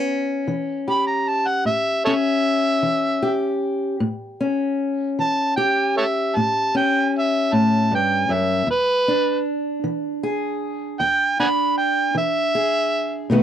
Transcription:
0.00 2.06 C#4 soft
0.48 1.19 E3 medium
0.88 3.21 G4 medium
0.88 1.06 B5 medium
1.07 1.30 A#5 medium
1.28 1.48 A5 medium
1.47 1.65 F#5 medium
1.65 2.36 A2 medium
1.65 2.04 E5 medium
2.05 3.96 C#4 medium
2.05 2.12 A4 medium
2.05 2.13 C#5 medium
2.05 3.57 E5 loud
2.83 3.53 E3 medium
3.23 3.96 G4 medium
4.00 4.70 A2 medium
4.41 6.73 C#4 medium
5.19 5.88 E3 medium
5.19 5.56 A5 medium
5.56 8.63 G4 medium
5.56 5.94 G5 medium
5.97 6.05 A4 medium
5.97 6.03 C#5 medium
5.97 6.38 E5 medium
6.36 7.05 A2 medium
6.36 6.73 A5 medium
6.75 8.63 C#4 medium
6.75 7.12 G5 medium
7.18 7.55 E5 medium
7.53 7.90 A2 medium
7.53 7.90 A5 medium
7.91 8.29 G2 medium
7.91 8.34 G5 medium
8.29 8.66 F#2 medium
8.29 8.68 E5 medium
8.67 9.37 E2 medium
8.67 9.44 B4 loud
9.08 11.38 D4 medium
9.84 10.54 E3 medium
10.23 12.54 G#4 medium
10.99 11.70 E2 medium
10.99 11.37 G5 medium
11.40 13.29 D4 medium
11.40 11.49 F#5 medium
11.40 11.46 G#5 medium
11.40 11.77 B5 medium
11.78 12.15 G5 medium
12.15 12.85 E3 medium
12.15 13.30 E5 medium
12.55 13.28 G#4 medium
13.30 13.43 B2 medium
13.30 13.43 D#3 medium
13.30 13.43 A3 medium
13.30 13.43 B3 medium
13.30 13.43 F#4 medium

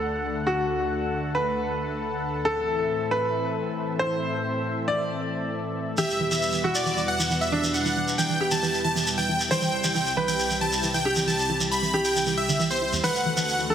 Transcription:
0.00 2.42 D2 medium
0.00 2.42 D3 medium
0.00 2.42 A3 medium
0.00 0.38 A4 medium
0.00 5.94 A4 medium
0.00 2.41 F#5 medium
0.47 1.26 F#4 medium
1.35 2.36 B4 medium
2.45 5.94 A2 medium
2.45 5.94 E3 medium
2.45 5.94 C4 medium
2.45 3.02 A4 medium
2.45 5.94 E5 medium
3.11 3.91 B4 medium
3.99 4.79 C5 medium
4.88 5.89 D5 medium
5.98 9.47 E2 medium
5.98 9.47 B2 medium
5.98 6.03 E3 medium
5.98 13.00 G3 medium
5.98 13.00 E4 medium
5.98 6.55 G4 medium
5.98 9.47 B4 medium
5.98 6.24 E5 loud
5.98 shekere medium
6.10 shekere soft
6.20 6.23 E3 medium
6.31 6.36 E3 medium
6.31 6.66 E5 medium
6.31 shekere medium
6.42 shekere medium
6.52 6.56 E3 medium
6.52 shekere soft
6.64 6.69 E3 medium
6.64 7.43 F#4 medium
6.75 7.01 D5 medium
6.75 shekere medium
6.86 6.89 E3 medium
6.86 shekere medium
6.97 7.02 E3 medium
6.97 shekere soft
7.08 7.34 F#5 medium
7.19 7.22 E3 medium
7.19 shekere medium
7.30 7.35 E3 medium
7.30 shekere medium
7.41 7.68 E5 medium
7.41 shekere soft
7.52 7.55 E3 medium
7.52 8.32 D4 medium
7.63 7.68 E3 medium
7.63 shekere medium
7.74 8.09 F#5 medium
7.74 shekere medium
7.85 7.88 E3 medium
7.85 shekere soft
7.96 8.02 E3 medium
8.08 shekere medium
8.18 8.22 E3 medium
8.18 8.45 G5 medium
8.18 shekere medium
8.30 8.35 E3 medium
8.30 shekere soft
8.41 9.42 G4 medium
8.51 8.55 E3 medium
8.51 8.78 A5 medium
8.51 shekere medium
8.63 8.68 E3 medium
8.63 shekere medium
8.74 shekere soft
8.84 8.88 E3 medium
8.84 9.11 A5 medium
8.96 9.01 E3 medium
8.96 shekere medium
9.07 shekere medium
9.18 9.21 E3 medium
9.18 9.44 G5 medium
9.18 shekere soft
9.29 9.34 E3 medium
9.40 shekere medium
9.51 13.00 C2 medium
9.51 13.00 C3 medium
9.51 9.54 E3 medium
9.51 13.00 G4 medium
9.51 10.08 C5 medium
9.51 9.77 G5 medium
9.51 shekere medium
9.62 9.67 E3 medium
9.62 shekere soft
9.84 9.87 E3 medium
9.84 10.19 G5 medium
9.84 shekere medium
9.95 10.00 E3 medium
9.95 shekere medium
10.06 shekere soft
10.17 10.20 E3 medium
10.17 10.96 B4 medium
10.28 10.33 E3 medium
10.28 10.54 G5 medium
10.28 shekere medium
10.39 shekere medium
10.50 10.53 E3 medium
10.50 shekere soft
10.61 10.66 E3 medium
10.61 10.88 A5 medium
10.72 shekere medium
10.83 10.86 E3 medium
10.83 shekere medium
10.94 10.99 E3 medium
10.94 11.21 G5 medium
10.94 shekere soft
11.05 11.85 G4 medium
11.15 11.19 E3 medium
11.15 shekere medium
11.27 11.32 E3 medium
11.27 11.63 A5 medium
11.27 shekere medium
11.39 shekere soft
11.49 11.52 E3 medium
11.60 11.65 E3 medium
11.60 shekere medium
11.71 11.98 B5 medium
11.71 shekere medium
11.82 11.85 E3 medium
11.82 shekere soft
11.93 11.99 E3 medium
11.93 12.95 G4 medium
12.05 12.31 G5 medium
12.05 shekere medium
12.15 12.19 E3 medium
12.15 shekere medium
12.26 12.32 E3 medium
12.26 shekere soft
12.37 12.41 E4 medium
12.37 12.64 E5 medium
12.49 12.56 D3 medium
12.49 shekere medium
12.60 12.65 E3 loud
12.60 shekere medium
12.70 12.78 B3 medium
12.70 12.97 C5 medium
12.70 shekere soft
12.82 12.87 E4 medium
12.93 13.00 E2 medium
12.93 shekere medium
13.04 13.75 D2 medium
13.04 13.75 D3 medium
13.04 13.09 E3 medium
13.04 13.75 A3 medium
13.04 13.75 F#4 medium
13.04 13.75 A4 medium
13.04 13.61 B4 medium
13.04 13.30 F#5 loud
13.04 shekere medium
13.15 shekere soft
13.26 13.29 E3 medium
13.37 13.42 E3 medium
13.37 13.72 F#5 medium
13.37 shekere medium
13.49 shekere medium
13.59 13.62 E3 medium
13.59 shekere soft
13.70 13.75 E3 medium
13.70 13.75 A4 medium

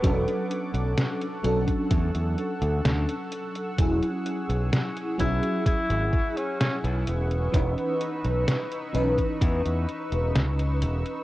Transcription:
0.00 0.24 E1 loud
0.00 1.38 F#3 loud
0.00 0.98 B3 medium
0.00 1.38 C#4 medium
0.00 1.39 D4 medium
0.00 3.75 A4 medium
0.00 7.50 F#5 medium
0.00 11.24 C#6 medium
0.00 1.43 D6 medium
0.00 kick loud
0.00 closed hi-hat medium
0.05 1.39 A4 loud
0.28 closed hi-hat soft
0.51 closed hi-hat medium
0.74 0.94 B1 medium
0.74 closed hi-hat soft
0.98 snare loud
0.98 closed hi-hat medium
1.22 closed hi-hat soft
1.43 1.64 B1 loud
1.43 3.73 F#3 loud
1.43 3.73 C#4 medium
1.43 3.74 D4 medium
1.43 3.74 A4 loud
1.43 7.50 E6 medium
1.43 closed hi-hat medium
1.68 kick medium
1.68 closed hi-hat soft
1.91 2.11 E2 loud
1.91 kick loud
1.91 closed hi-hat medium
2.15 2.34 E2 medium
2.15 closed hi-hat soft
2.38 closed hi-hat soft
2.62 2.81 D2 loud
2.62 closed hi-hat soft
2.85 3.05 D2 medium
2.85 snare loud
2.85 closed hi-hat medium
3.09 closed hi-hat soft
3.32 closed hi-hat medium
3.55 closed hi-hat soft
3.78 3.99 E1 loud
3.78 5.13 F#3 medium
3.78 5.14 C#4 medium
3.78 5.14 E4 medium
3.78 7.50 G#4 medium
3.78 5.15 G#4 loud
3.78 kick loud
3.78 closed hi-hat medium
4.03 closed hi-hat soft
4.26 closed hi-hat medium
4.49 4.69 B1 medium
4.49 closed hi-hat soft
4.73 snare loud
4.73 closed hi-hat medium
4.97 closed hi-hat soft
5.18 5.39 B1 loud
5.18 7.47 F#3 loud
5.18 7.48 C#4 medium
5.18 7.48 E4 medium
5.18 5.63 E4 loud
5.18 7.49 G#4 loud
5.18 kick medium
5.18 closed hi-hat medium
5.43 closed hi-hat soft
5.66 6.39 E4 loud
5.66 muted fingered electric bass stroke soft
5.66 kick loud
5.66 closed hi-hat medium
5.90 6.10 G#1 loud
5.90 closed hi-hat soft
6.13 kick loud
6.13 closed hi-hat soft
6.37 6.60 C#4 loud
6.37 closed hi-hat soft
6.60 6.76 C#4 loud
6.60 snare loud
6.60 closed hi-hat medium
6.84 7.03 B1 loud
6.84 closed hi-hat soft
7.07 7.47 E1 medium
7.07 8.44 B3 medium
7.07 closed hi-hat medium
7.31 closed hi-hat soft
7.52 7.74 E1 loud
7.52 8.88 E3 loud
7.52 8.89 C#4 medium
7.52 8.89 D#4 medium
7.52 11.24 D#4 medium
7.52 11.24 B4 medium
7.52 8.89 B4 loud
7.52 11.24 E6 medium
7.52 kick loud
7.52 closed hi-hat medium
7.78 closed hi-hat soft
8.01 closed hi-hat medium
8.25 8.44 B1 medium
8.25 closed hi-hat soft
8.48 snare loud
8.48 closed hi-hat medium
8.72 closed hi-hat soft
8.93 9.15 B1 loud
8.93 11.23 E3 loud
8.93 11.23 C#4 medium
8.93 11.24 D#4 medium
8.93 11.24 B4 loud
8.93 closed hi-hat medium
9.18 kick medium
9.18 closed hi-hat soft
9.41 9.61 E2 loud
9.41 kick loud
9.41 closed hi-hat medium
9.65 9.85 E2 medium
9.65 closed hi-hat soft
9.89 closed hi-hat soft
10.12 10.32 E1 loud
10.12 closed hi-hat soft
10.35 10.83 C#2 medium
10.35 snare loud
10.35 closed hi-hat medium
10.59 closed hi-hat soft
10.82 11.02 E1 loud
10.82 closed hi-hat medium
11.06 closed hi-hat soft

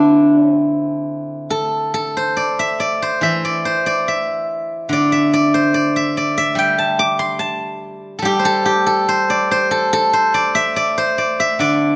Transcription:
0.00 2.37 D3 soft
0.00 0.54 C4 medium
0.00 0.38 D4 medium
0.00 2.09 E4 medium
0.00 0.91 G4 medium
0.38 0.54 C#4 medium
0.54 2.51 C4 medium
1.50 1.93 A4 medium
1.94 4.13 A4 medium
2.17 3.02 C5 medium
2.37 2.79 D5 medium
2.59 3.22 E5 medium
2.80 3.44 D5 medium
3.02 3.65 C5 medium
3.21 5.74 E3 medium
3.21 4.08 E5 medium
3.45 3.86 D5 medium
3.65 5.54 C5 medium
3.86 4.92 D5 medium
4.08 5.12 E5 medium
4.89 7.40 D3 medium
4.89 5.33 D5 medium
5.12 5.96 E5 medium
5.33 5.74 D5 medium
5.54 7.52 C5 medium
5.74 6.17 D5 medium
5.96 6.37 E5 medium
6.17 8.02 D5 medium
6.38 8.10 E5 medium
6.55 8.21 G3 medium
6.55 8.14 G5 loud
6.78 7.39 A5 medium
6.99 8.21 D6 loud
7.19 8.50 C6 medium
7.39 8.84 A5 medium
8.19 10.76 G3 medium
8.19 8.45 A4 medium
8.25 8.65 G4 medium
8.39 9.08 C5 medium
8.45 8.86 A4 loud
8.65 11.01 G4 medium
8.86 9.71 A4 medium
9.09 9.51 C5 medium
9.30 10.34 D5 medium
9.51 10.13 C5 medium
9.71 9.92 A4 medium
9.93 11.96 A4 loud
10.13 10.97 C5 medium
10.34 10.76 D5 medium
10.55 11.39 E5 loud
10.76 11.18 D5 medium
10.98 11.96 C5 medium
11.18 11.60 D5 medium
11.40 11.96 E5 medium
11.59 11.96 D3 medium
11.59 11.96 D5 medium

